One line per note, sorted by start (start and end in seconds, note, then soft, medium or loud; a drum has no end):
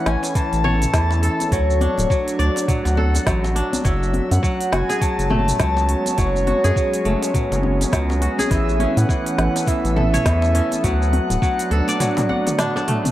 0.00 0.34 E3 medium
0.00 1.52 E3 medium
0.00 8.51 A3 medium
0.00 1.52 C#4 medium
0.00 0.80 A4 medium
0.00 3.85 A4 medium
0.00 1.51 C#5 medium
0.06 0.17 A1 medium
0.06 1.80 C#4 medium
0.06 0.35 G#5 loud
0.06 snare medium
0.06 open hi-hat soft
0.23 open hi-hat soft
0.23 djembe slap medium
0.23 shaker medium
0.35 0.92 E3 medium
0.35 1.48 A5 loud
0.35 kick loud
0.35 open hi-hat medium
0.35 shaker medium
0.53 0.86 A1 medium
0.53 open hi-hat soft
0.53 shaker soft
0.64 1.79 C#5 loud
0.64 mid tom medium
0.64 djembe tone medium
0.64 djembe bass loud
0.82 mid tom medium
0.82 open hi-hat soft
0.82 shaker medium
0.93 1.29 E2 medium
0.93 1.57 E3 medium
0.93 kick loud
0.93 snare medium
0.93 open hi-hat medium
0.93 shaker medium
1.11 djembe slap medium
1.11 shaker soft
1.23 2.54 A4 medium
1.23 open hi-hat medium
1.40 open hi-hat soft
1.40 djembe tone medium
1.40 shaker medium
1.51 1.87 D2 loud
1.51 8.51 F#3 medium
1.51 2.09 F#3 medium
1.51 3.23 C#5 loud
1.51 kick loud
1.51 open hi-hat medium
1.51 shaker medium
1.70 shaker soft
1.80 3.49 D4 medium
1.80 open hi-hat soft
1.80 djembe tone soft
1.80 djembe bass medium
1.90 3.85 D4 medium
1.98 2.05 D1 loud
1.98 open hi-hat soft
1.98 djembe tone medium
1.98 shaker medium
2.10 2.67 F#3 medium
2.10 kick loud
2.10 shaker medium
2.28 open hi-hat medium
2.28 shaker soft
2.39 2.50 D2 medium
2.39 3.50 D5 loud
2.39 open hi-hat soft
2.56 3.85 F#5 medium
2.56 open hi-hat soft
2.56 djembe slap medium
2.56 shaker medium
2.68 3.25 F#3 medium
2.68 kick loud
2.68 mid tom medium
2.68 open hi-hat medium
2.68 shaker medium
2.85 3.19 D2 medium
2.85 open hi-hat soft
2.85 djembe slap medium
2.85 shaker soft
2.97 4.29 A4 medium
2.97 djembe bass medium
3.14 open hi-hat soft
3.14 djembe slap medium
3.14 djembe tone medium
3.14 shaker medium
3.26 3.62 A1 medium
3.26 3.83 F#3 medium
3.26 kick loud
3.26 snare medium
3.26 mid tom medium
3.26 open hi-hat medium
3.26 shaker medium
3.44 djembe slap medium
3.44 djembe tone medium
3.44 shaker soft
3.56 5.24 D4 medium
3.56 open hi-hat soft
3.73 open hi-hat soft
3.73 djembe tone medium
3.73 djembe bass medium
3.73 shaker medium
3.85 4.20 F#1 loud
3.85 4.42 F#3 medium
3.85 13.12 B3 medium
3.85 13.12 B4 medium
3.85 4.33 E5 loud
3.85 kick loud
3.85 open hi-hat medium
3.85 shaker medium
4.03 shaker soft
4.14 10.84 C#4 loud
4.14 10.84 C#5 medium
4.14 open hi-hat soft
4.14 djembe bass medium
4.31 4.38 F#2 loud
4.31 4.74 F#5 loud
4.31 open hi-hat soft
4.31 djembe tone medium
4.31 shaker medium
4.43 5.00 F#3 medium
4.43 kick loud
4.43 shaker medium
4.61 open hi-hat medium
4.61 shaker soft
4.71 4.83 F#1 medium
4.71 8.51 G#3 medium
4.71 6.18 F#4 medium
4.71 5.03 G#5 loud
4.71 snare medium
4.71 open hi-hat soft
4.89 5.36 G#4 medium
4.89 open hi-hat soft
4.89 djembe slap medium
4.89 shaker medium
5.01 5.58 F#3 medium
5.01 6.18 A5 loud
5.01 kick loud
5.01 open hi-hat medium
5.01 shaker medium
5.19 5.52 F#1 medium
5.19 open hi-hat soft
5.19 shaker soft
5.30 6.70 A3 medium
5.30 mid tom medium
5.30 djembe tone medium
5.30 djembe bass medium
5.48 mid tom medium
5.48 open hi-hat soft
5.48 shaker medium
5.60 5.95 C#2 medium
5.60 6.17 F#3 medium
5.60 kick loud
5.60 snare medium
5.60 open hi-hat medium
5.60 shaker medium
5.77 djembe slap medium
5.77 shaker soft
5.89 open hi-hat medium
6.06 open hi-hat soft
6.06 djembe tone medium
6.06 shaker medium
6.18 6.53 F#1 loud
6.18 6.75 F#3 medium
6.18 7.89 C#5 loud
6.18 kick loud
6.18 open hi-hat medium
6.18 shaker medium
6.36 shaker soft
6.47 7.93 F#4 medium
6.47 open hi-hat soft
6.47 djembe tone soft
6.47 djembe bass medium
6.64 6.72 F#2 loud
6.64 7.11 G#4 loud
6.64 open hi-hat soft
6.64 djembe tone medium
6.64 shaker medium
6.76 7.33 F#3 medium
6.76 kick loud
6.76 shaker medium
6.94 open hi-hat medium
6.94 shaker soft
7.05 7.16 F#1 medium
7.05 8.45 A3 medium
7.05 open hi-hat soft
7.23 open hi-hat soft
7.23 djembe slap soft
7.23 shaker medium
7.34 7.91 F#3 medium
7.34 kick medium
7.34 mid tom medium
7.34 open hi-hat medium
7.34 shaker medium
7.52 7.85 F#1 medium
7.52 open hi-hat soft
7.52 djembe slap medium
7.52 shaker soft
7.63 djembe bass medium
7.81 open hi-hat soft
7.81 djembe slap medium
7.81 djembe tone medium
7.81 shaker medium
7.93 8.28 C#2 medium
7.93 8.56 F#3 medium
7.93 kick loud
7.93 snare medium
7.93 open hi-hat medium
7.93 shaker medium
8.09 djembe slap medium
8.09 djembe tone medium
8.09 shaker soft
8.22 9.68 F#4 medium
8.22 open hi-hat medium
8.38 9.75 G#4 loud
8.38 open hi-hat soft
8.38 djembe tone medium
8.38 djembe bass medium
8.38 shaker medium
8.51 8.86 A1 loud
8.51 10.84 E3 medium
8.51 9.08 E3 medium
8.51 8.99 E5 loud
8.51 kick loud
8.51 open hi-hat medium
8.51 shaker medium
8.56 13.12 A3 medium
8.69 13.12 A4 medium
8.69 shaker soft
8.80 10.54 C#4 medium
8.80 open hi-hat soft
8.80 djembe bass medium
8.97 9.04 A2 loud
8.97 9.69 F#5 loud
8.97 open hi-hat soft
8.97 djembe tone medium
8.97 shaker medium
9.09 9.66 E3 medium
9.09 kick loud
9.09 shaker medium
9.26 open hi-hat medium
9.26 shaker soft
9.38 9.49 A1 medium
9.38 snare medium
9.38 open hi-hat soft
9.56 open hi-hat soft
9.56 djembe slap medium
9.56 shaker medium
9.67 10.24 E3 medium
9.67 10.86 E5 loud
9.67 kick loud
9.67 open hi-hat medium
9.67 shaker medium
9.85 10.18 A1 medium
9.85 open hi-hat soft
9.85 shaker soft
9.96 11.28 A4 medium
9.96 mid tom medium
9.96 djembe tone medium
9.96 djembe bass medium
10.14 11.28 C#5 loud
10.14 mid tom medium
10.14 open hi-hat soft
10.14 shaker medium
10.25 10.61 E2 medium
10.25 10.89 E3 medium
10.25 kick loud
10.25 snare medium
10.25 open hi-hat medium
10.25 shaker medium
10.42 djembe slap medium
10.42 shaker soft
10.55 11.95 C#4 medium
10.55 open hi-hat medium
10.71 open hi-hat soft
10.71 djembe tone medium
10.71 shaker medium
10.83 11.19 D2 loud
10.83 13.12 F#3 loud
10.83 11.41 F#3 medium
10.83 12.88 F#5 loud
10.83 kick loud
10.83 open hi-hat medium
10.83 shaker medium
11.02 shaker soft
11.13 open hi-hat soft
11.13 djembe tone soft
11.13 djembe bass medium
11.30 11.37 D1 loud
11.30 open hi-hat soft
11.30 djembe tone medium
11.30 shaker medium
11.37 13.12 D4 medium
11.42 11.99 F#3 medium
11.42 kick loud
11.42 shaker medium
11.59 open hi-hat medium
11.59 shaker soft
11.71 11.82 D2 medium
11.71 13.03 A4 medium
11.71 open hi-hat soft
11.88 12.99 D5 loud
11.88 13.12 D5 medium
11.88 open hi-hat soft
11.88 djembe slap medium
11.88 shaker medium
12.00 13.12 F#3 medium
12.00 mid tom medium
12.00 open hi-hat medium
12.00 high tom medium
12.00 shaker medium
12.17 mid tom medium
12.17 open hi-hat soft
12.17 high tom medium
12.17 djembe slap medium
12.17 shaker soft
12.29 13.12 F#5 medium
12.29 djembe bass medium
12.46 open hi-hat soft
12.46 mid tom medium
12.46 djembe slap medium
12.46 djembe tone medium
12.46 shaker medium
12.58 12.75 D4 loud
12.58 snare medium
12.58 mid tom medium
12.58 open hi-hat medium
12.58 mid tom medium
12.58 shaker medium
12.76 13.12 D4 medium
12.76 djembe slap medium
12.76 djembe tone medium
12.76 shaker soft
12.88 13.12 A3 medium
12.88 mid tom loud
12.88 open hi-hat medium
13.05 mid tom medium
13.05 open hi-hat soft
13.05 djembe slap soft
13.05 djembe tone medium
13.05 djembe bass medium
13.05 shaker medium